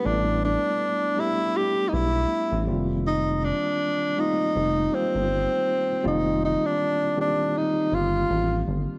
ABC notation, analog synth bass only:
X:1
M:4/4
L:1/16
Q:"Swing 16ths" 1/4=80
K:Flyd
V:1 name="Analog synth bass" clef=bass
A,,,3 z6 z B,,,2 z A,,, F,,,2- | F,,,3 z4 z F,,,2 z G,,,2 z3 | F,,,3 z6 z G,,,2 A,,,2 G,,, z |]